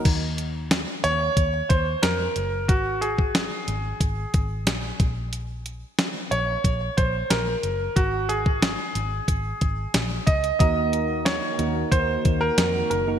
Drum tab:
CC |x---------------|----------------|----------------|----------------|
HH |x-x-x-x-x-x-x-x-|x-x-x-x-x-x-x-x-|x-x-x-x-x-x-x-x-|x-x-x-x-x-x-x-xx|
SD |----o-------o---|----o-------o---|----o-------o---|----o-------o---|
BD |o-------o-o-----|o--o----o-o---o-|--------o-o-----|o--o----o-o---o-|

CC |----------------|
HH |x-x-x-x-x-x-x-x-|
SD |----o-------o---|
BD |o-------o-o-----|